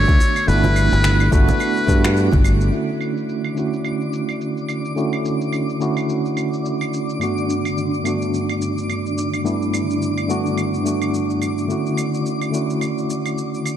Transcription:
0.00 2.71 D3 medium
0.00 0.47 A3 medium
0.00 0.48 B3 medium
0.00 0.48 D4 medium
0.00 1.33 F#4 medium
0.00 0.50 C#5 loud
0.00 2.74 D7 medium
0.08 0.18 D2 medium
0.08 kick loud
0.08 high conga medium
0.08 shaker soft
0.20 high bongo medium
0.20 shaker medium
0.36 claves medium
0.36 shaker soft
0.47 0.88 G1 loud
0.47 0.66 A3 medium
0.47 0.67 B3 medium
0.47 0.67 D4 medium
0.47 0.67 E4 loud
0.47 1.32 B4 loud
0.47 shaker soft
0.64 high bongo medium
0.64 high conga medium
0.64 shaker soft
0.76 claves medium
0.76 shaker medium
0.92 1.29 G1 loud
0.92 high bongo medium
0.92 shaker soft
1.04 finger snap medium
1.04 high conga medium
1.04 shaker soft
1.20 claves medium
1.20 shaker soft
1.31 1.46 G1 loud
1.31 1.85 A3 loud
1.31 1.85 B3 medium
1.31 1.86 D4 medium
1.31 1.86 F#4 loud
1.31 2.41 B4 loud
1.31 kick loud
1.31 high bongo medium
1.31 shaker medium
1.48 high conga medium
1.48 low conga medium
1.48 shaker soft
1.60 high bongo medium
1.60 claves medium
1.60 shaker soft
1.77 shaker soft
1.86 2.29 G2 loud
1.86 2.68 A3 medium
1.86 2.69 B3 medium
1.86 2.70 D4 medium
1.86 kick medium
1.86 high conga medium
1.86 shaker medium
1.91 2.71 F#4 medium
2.04 finger snap medium
2.04 high bongo medium
2.04 claves medium
2.04 shaker soft
2.17 shaker soft
2.32 2.69 G1 medium
2.32 kick loud
2.32 high bongo medium
2.32 high conga medium
2.32 shaker soft
2.44 claves medium
2.44 shaker medium
2.61 shaker soft
2.70 3.52 D3 medium
2.70 13.77 D3 medium
2.70 3.53 A3 medium
2.70 3.54 C#4 medium
2.70 3.54 E4 medium
2.70 13.77 D6 medium
2.70 shaker soft
2.75 3.55 F#4 medium
2.89 shaker soft
3.01 claves medium
3.01 shaker medium
3.17 shaker soft
3.29 shaker soft
3.44 claves medium
3.44 shaker soft
3.54 4.93 D3 medium
3.54 4.93 A3 medium
3.54 4.94 C#4 medium
3.54 4.94 E4 medium
3.54 shaker medium
3.59 4.95 F#4 medium
3.73 shaker soft
3.85 claves medium
3.85 shaker soft
4.01 shaker soft
4.13 shaker medium
4.29 claves medium
4.29 shaker soft
4.41 shaker soft
4.57 shaker soft
4.69 claves medium
4.69 shaker medium
4.85 shaker soft
4.95 5.15 D3 medium
4.95 5.15 A3 medium
4.95 5.15 C#4 medium
4.95 5.16 E4 medium
4.95 5.16 F#4 medium
4.95 shaker soft
5.13 claves medium
5.13 shaker soft
5.25 shaker medium
5.41 shaker soft
5.53 claves medium
5.53 shaker soft
5.69 shaker soft
5.80 6.33 D3 medium
5.80 6.34 A3 medium
5.80 6.34 C#4 medium
5.80 6.34 E4 medium
5.80 6.35 F#4 medium
5.80 shaker medium
5.97 claves medium
5.97 shaker soft
6.09 shaker soft
6.25 shaker soft
6.37 claves medium
6.37 shaker medium
6.53 shaker soft
6.66 shaker soft
6.81 claves medium
6.81 shaker soft
6.94 shaker medium
7.10 shaker soft
7.19 8.01 G2 medium
7.19 8.02 A3 medium
7.19 8.02 B3 medium
7.19 8.03 D4 medium
7.19 claves medium
7.19 shaker soft
7.23 8.03 F#4 medium
7.38 shaker soft
7.50 shaker medium
7.65 claves medium
7.65 shaker soft
7.78 shaker soft
7.94 shaker soft
8.02 9.41 G2 medium
8.02 9.42 A3 medium
8.02 9.42 B3 medium
8.02 9.43 D4 medium
8.02 claves medium
8.02 shaker medium
8.07 9.43 F#4 medium
8.22 shaker soft
8.34 shaker soft
8.49 claves medium
8.49 shaker soft
8.62 shaker medium
8.78 shaker soft
8.90 claves medium
8.90 shaker soft
9.06 shaker soft
9.18 shaker medium
9.34 claves medium
9.34 shaker soft
9.44 9.63 G2 medium
9.44 9.64 A3 medium
9.44 9.64 B3 medium
9.44 9.64 D4 medium
9.44 9.64 E4 medium
9.44 shaker soft
9.62 shaker soft
9.74 claves medium
9.74 shaker medium
9.90 shaker soft
10.02 shaker soft
10.18 claves medium
10.18 shaker soft
10.28 10.82 G2 medium
10.28 10.82 A3 medium
10.28 10.83 B3 medium
10.28 10.83 D4 medium
10.28 10.83 F#4 medium
10.28 shaker medium
10.46 shaker soft
10.58 claves medium
10.58 shaker soft
10.74 shaker soft
10.83 11.66 G2 medium
10.83 11.66 A3 medium
10.83 11.67 B3 medium
10.83 11.67 D4 medium
10.83 shaker medium
10.88 11.68 F#4 medium
11.02 claves medium
11.02 shaker soft
11.14 shaker soft
11.30 shaker soft
11.42 claves medium
11.42 shaker medium
11.58 shaker soft
11.67 12.50 D3 medium
11.67 12.50 A3 medium
11.67 12.51 C#4 medium
11.67 12.51 E4 medium
11.67 shaker soft
11.72 12.52 F#4 medium
11.86 shaker soft
11.97 claves medium
11.97 shaker medium
12.14 shaker soft
12.26 shaker soft
12.42 claves medium
12.42 shaker soft
12.51 13.77 D3 medium
12.51 13.77 A3 medium
12.51 13.77 C#4 medium
12.51 13.77 E4 medium
12.51 shaker medium
12.55 13.77 F#4 medium
12.70 shaker soft
12.81 claves medium
12.81 shaker soft
12.98 shaker soft
13.10 shaker medium
13.26 claves medium
13.26 shaker soft
13.38 shaker soft
13.54 shaker soft
13.66 claves medium
13.66 shaker medium

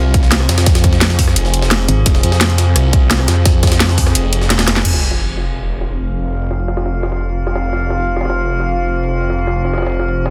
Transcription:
0.00 0.48 C2 loud
0.00 4.81 C3 medium
0.00 4.81 C4 medium
0.00 4.81 F4 medium
0.00 4.83 G#4 medium
0.14 kick loud
0.14 closed hi-hat medium
0.23 snare soft
0.32 snare loud
0.32 closed hi-hat medium
0.40 cross-stick soft
0.49 1.35 F2 medium
0.49 snare loud
0.49 closed hi-hat medium
0.58 snare loud
0.58 closed hi-hat medium
0.66 kick loud
0.66 snare loud
0.66 closed hi-hat medium
0.75 snare loud
0.75 closed hi-hat medium
0.84 kick loud
0.84 cross-stick soft
0.84 closed hi-hat medium
0.93 snare medium
1.01 snare loud
1.01 closed hi-hat loud
1.01 closed hi-hat medium
1.10 snare medium
1.19 kick medium
1.19 closed hi-hat medium
1.19 open hi-hat medium
1.28 cross-stick soft
1.28 snare soft
1.36 1.87 F1 loud
1.36 closed hi-hat medium
1.36 closed hi-hat loud
1.45 snare soft
1.54 closed hi-hat medium
1.62 snare medium
1.71 snare loud
1.71 closed hi-hat medium
1.89 2.05 G#1 loud
1.89 closed hi-hat medium
2.06 2.22 F1 loud
2.06 kick loud
2.06 closed hi-hat loud
2.06 closed hi-hat medium
2.15 snare medium
2.23 2.74 F2 loud
2.23 closed hi-hat medium
2.32 snare medium
2.41 snare loud
2.41 closed hi-hat loud
2.41 closed hi-hat medium
2.50 closed hi-hat soft
2.58 snare soft
2.58 closed hi-hat medium
2.76 3.27 C2 loud
2.76 cross-stick soft
2.76 closed hi-hat medium
2.93 kick loud
2.93 closed hi-hat medium
3.11 snare loud
3.11 closed hi-hat medium
3.11 closed hi-hat loud
3.19 cross-stick soft
3.28 4.14 F2 loud
3.28 snare loud
3.28 closed hi-hat medium
3.45 kick loud
3.45 snare loud
3.45 closed hi-hat loud
3.45 closed hi-hat medium
3.63 kick loud
3.63 cross-stick soft
3.63 snare medium
3.63 closed hi-hat medium
3.67 snare medium
3.67 closed hi-hat medium
3.72 snare loud
3.72 closed hi-hat medium
3.80 snare loud
3.80 closed hi-hat loud
3.80 closed hi-hat medium
3.89 snare medium
3.98 kick medium
3.98 closed hi-hat medium
3.98 open hi-hat medium
4.07 cross-stick soft
4.07 snare soft
4.15 4.66 F1 loud
4.15 closed hi-hat loud
4.15 closed hi-hat medium
4.33 closed hi-hat medium
4.42 snare soft
4.50 snare medium
4.50 snare loud
4.50 closed hi-hat loud
4.50 closed hi-hat medium
4.59 snare medium
4.59 snare loud
4.59 closed hi-hat medium
4.68 4.84 F1 loud
4.68 snare medium
4.68 snare loud
4.68 closed hi-hat medium
4.76 snare medium
4.76 snare soft
4.85 10.30 F1 medium
4.85 10.30 C3 medium
4.85 10.30 C4 medium
4.85 10.30 F4 medium
4.85 10.30 F5 medium
4.85 closed hi-hat medium
4.85 crash medium
4.85 sub drop medium
4.94 snare medium
5.11 snare medium
5.20 closed hi-hat medium
5.29 closed hi-hat soft
5.37 snare soft
5.37 closed hi-hat medium
5.55 closed hi-hat medium
5.72 closed hi-hat medium
5.81 snare soft
5.90 closed hi-hat medium
6.07 closed hi-hat medium
6.25 closed hi-hat medium
6.42 closed hi-hat medium
6.51 snare soft
6.59 closed hi-hat medium
6.68 snare medium
6.77 snare loud
6.77 closed hi-hat medium
6.86 snare soft
6.94 closed hi-hat medium
7.03 snare loud
7.03 closed hi-hat medium
7.12 snare soft
7.21 closed hi-hat medium
7.29 closed hi-hat medium
7.47 snare loud
7.47 closed hi-hat medium
7.55 snare loud
7.55 closed hi-hat medium
7.64 closed hi-hat medium
7.73 snare soft
7.82 closed hi-hat medium
7.90 snare medium
7.99 closed hi-hat medium
8.08 closed hi-hat soft
8.16 snare medium
8.16 closed hi-hat medium
8.21 snare medium
8.21 closed hi-hat medium
8.25 snare medium
8.25 closed hi-hat medium
8.30 snare medium
8.30 closed hi-hat medium
8.34 closed hi-hat medium
8.51 closed hi-hat medium
8.60 snare soft
8.69 closed hi-hat medium
8.86 closed hi-hat medium
9.04 closed hi-hat medium
9.21 closed hi-hat medium
9.30 snare soft
9.39 closed hi-hat medium
9.47 snare medium
9.56 closed hi-hat medium
9.65 snare soft
9.73 snare medium
9.73 closed hi-hat medium
9.78 snare medium
9.78 closed hi-hat medium
9.82 snare medium
9.82 closed hi-hat medium
9.87 snare medium
9.87 closed hi-hat medium
9.91 closed hi-hat medium
10.00 snare medium
10.08 closed hi-hat medium
10.26 snare loud
10.26 closed hi-hat medium

